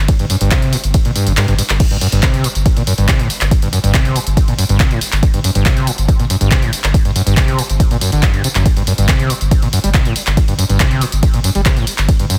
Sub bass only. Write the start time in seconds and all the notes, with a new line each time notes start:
0.19 G1
0.41 G1
0.62 G1
0.84 G1
1.05 G1
1.27 G1
1.48 G1
1.69 G1
1.91 G1
2.12 G1
2.34 G1
2.55 G1
2.77 G1
2.98 G1
3.19 G1
3.41 G1
3.62 G1
3.83 G1
4.05 G1
4.26 G1
4.48 G1
4.69 G1
4.91 G1
5.12 G1
5.34 G1
5.55 G1
5.77 G1
5.98 G1
6.19 G1
6.41 G1
6.62 G1
6.84 G1
7.05 G1
7.27 G1
7.48 G1
7.69 G1
7.91 G1
8.12 G1
8.34 G1
8.55 G1
8.77 G1
8.98 G1
9.19 G1
9.41 G1
9.62 G1
9.84 G1
10.05 G1
10.27 G1
10.48 G1
10.69 G1
10.91 G1
11.12 G1
11.34 G1
11.55 G1
11.77 G1
11.98 G1
12.19 G1